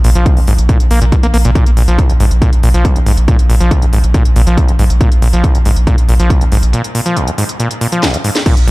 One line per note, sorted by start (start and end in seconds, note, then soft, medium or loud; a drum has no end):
0.04 0.15 A#1 loud
0.04 0.10 A#2 medium
0.04 open hi-hat loud
0.15 0.26 A#1 medium
0.15 0.27 F3 medium
0.15 closed hi-hat medium
0.26 0.38 A#1 medium
0.26 kick loud
0.26 closed hi-hat medium
0.37 0.47 A#1 medium
0.37 0.40 G#2 medium
0.37 open hi-hat medium
0.47 0.58 A#1 loud
0.47 0.54 G#2 medium
0.47 open hi-hat loud
0.58 0.69 A#1 medium
0.58 closed hi-hat medium
0.69 0.78 A#2 medium
0.69 kick loud
0.69 closed hi-hat medium
0.80 0.90 A#1 medium
0.80 closed hi-hat medium
0.90 1.01 A#1 loud
0.90 1.00 A#3 medium
0.90 open hi-hat loud
1.01 1.12 A#1 medium
1.01 1.05 A#2 medium
1.01 closed hi-hat medium
1.12 1.16 B2 medium
1.12 kick loud
1.12 closed hi-hat medium
1.23 1.33 A#1 medium
1.23 1.27 A#3 loud
1.23 closed hi-hat medium
1.34 1.44 A#1 loud
1.34 1.37 A#3 loud
1.34 open hi-hat loud
1.45 1.55 A#1 medium
1.45 1.51 A#2 loud
1.45 closed hi-hat medium
1.55 1.64 A#2 medium
1.55 kick loud
1.55 closed hi-hat medium
1.66 1.76 A#1 medium
1.66 closed hi-hat medium
1.77 1.87 A#1 loud
1.77 1.83 A#2 medium
1.77 open hi-hat loud
1.88 1.98 A#1 medium
1.88 2.00 F3 medium
1.88 closed hi-hat medium
1.99 2.11 A#1 medium
1.99 kick loud
1.99 closed hi-hat medium
2.09 2.19 A#1 medium
2.09 2.13 G#2 medium
2.09 closed hi-hat medium
2.20 2.30 A#1 medium
2.20 2.26 G#2 medium
2.20 open hi-hat loud
2.31 2.41 A#1 medium
2.31 closed hi-hat medium
2.42 2.51 A#2 medium
2.42 kick loud
2.42 closed hi-hat medium
2.53 2.63 A#1 medium
2.53 closed hi-hat medium
2.63 2.74 A#1 loud
2.63 2.69 A#2 medium
2.63 open hi-hat loud
2.74 2.85 A#1 medium
2.74 2.86 F3 medium
2.74 closed hi-hat medium
2.85 2.97 A#1 medium
2.85 kick loud
2.85 closed hi-hat medium
2.96 3.06 A#1 medium
2.96 2.99 G#2 medium
2.96 closed hi-hat medium
3.06 3.17 A#1 loud
3.06 3.12 G#2 medium
3.06 open hi-hat loud
3.17 3.28 A#1 medium
3.17 closed hi-hat medium
3.28 3.37 A#2 medium
3.28 kick loud
3.28 closed hi-hat medium
3.39 3.49 A#1 medium
3.39 closed hi-hat medium
3.50 3.60 A#1 loud
3.50 3.56 A#2 medium
3.50 open hi-hat loud
3.61 3.71 A#1 medium
3.61 3.73 F3 medium
3.61 closed hi-hat medium
3.71 3.84 A#1 medium
3.71 kick loud
3.71 closed hi-hat medium
3.82 3.92 A#1 medium
3.82 3.86 G#2 medium
3.82 closed hi-hat medium
3.93 4.03 A#1 loud
3.93 3.99 G#2 medium
3.93 open hi-hat loud
4.04 4.14 A#1 medium
4.04 closed hi-hat medium
4.14 4.23 A#2 medium
4.14 kick loud
4.14 closed hi-hat medium
4.25 4.35 A#1 medium
4.25 closed hi-hat medium
4.36 4.46 A#1 loud
4.36 4.42 A#2 medium
4.36 open hi-hat loud
4.47 4.57 A#1 medium
4.47 4.59 F3 medium
4.47 closed hi-hat medium
4.57 4.70 A#1 medium
4.57 kick loud
4.57 closed hi-hat medium
4.68 4.78 A#1 medium
4.68 4.72 G#2 medium
4.68 closed hi-hat medium
4.79 4.89 A#1 loud
4.79 4.85 G#2 medium
4.79 open hi-hat loud
4.90 5.00 A#1 medium
4.90 closed hi-hat medium
5.01 5.10 A#2 medium
5.01 kick loud
5.01 closed hi-hat medium
5.12 5.22 A#1 medium
5.12 closed hi-hat medium
5.22 5.33 A#1 loud
5.22 5.28 A#2 medium
5.22 open hi-hat loud
5.33 5.44 A#1 medium
5.33 5.45 F3 medium
5.33 closed hi-hat medium
5.44 5.56 A#1 medium
5.44 kick loud
5.44 closed hi-hat medium
5.55 5.65 A#1 medium
5.55 5.58 G#2 medium
5.55 closed hi-hat medium
5.65 5.76 A#1 loud
5.65 5.71 G#2 medium
5.65 open hi-hat loud
5.76 5.87 A#1 medium
5.76 closed hi-hat medium
5.87 5.96 A#2 medium
5.87 kick loud
5.87 closed hi-hat medium
5.98 6.08 A#1 medium
5.98 closed hi-hat medium
6.09 6.19 A#1 loud
6.09 6.15 A#2 medium
6.09 open hi-hat loud
6.19 6.30 A#1 medium
6.19 6.32 F3 medium
6.19 closed hi-hat medium
6.30 6.43 A#1 medium
6.30 kick loud
6.30 closed hi-hat medium
6.41 6.51 A#1 medium
6.41 6.45 G#2 medium
6.41 closed hi-hat medium
6.52 6.62 A#1 loud
6.52 6.58 G#2 medium
6.52 open hi-hat loud
6.63 6.73 A#1 medium
6.63 closed hi-hat medium
6.73 6.82 A#2 medium
6.73 closed hi-hat medium
6.84 closed hi-hat medium
6.95 7.01 A#2 medium
6.95 open hi-hat loud
7.06 7.18 F3 medium
7.06 closed hi-hat medium
7.16 7.29 A#1 medium
7.16 closed hi-hat medium
7.27 7.31 G#2 medium
7.27 closed hi-hat medium
7.38 7.44 G#2 medium
7.38 open hi-hat loud
7.49 closed hi-hat medium
7.60 7.69 A#2 medium
7.60 closed hi-hat medium
7.71 closed hi-hat medium
7.81 7.87 A#2 medium
7.81 open hi-hat loud
7.92 8.04 F3 medium
7.92 closed hi-hat medium
8.03 8.15 A#1 medium
8.03 snare loud
8.03 closed hi-hat medium
8.14 8.17 G#2 medium
8.14 closed hi-hat medium
8.24 8.30 G#2 medium
8.24 open hi-hat loud
8.35 snare medium
8.35 closed hi-hat medium
8.46 8.55 A#2 medium
8.46 kick loud
8.46 closed hi-hat medium
8.46 crash medium
8.57 8.67 A#1 medium
8.57 closed hi-hat medium
8.67 8.71 A#1 loud
8.67 8.71 A#2 medium
8.67 mid tom medium
8.67 open hi-hat loud